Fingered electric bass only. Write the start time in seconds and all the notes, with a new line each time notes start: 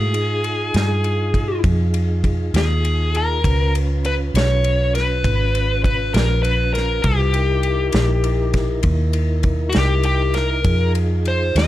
Already playing: G#2
0.74 G2
1.64 F2
2.54 D#2
3.44 C#2
4.34 B1
5.24 G#1
6.14 A#1
7.04 C2
7.94 A#1
8.84 D#2
9.75 C2
10.65 F2
11.55 D#2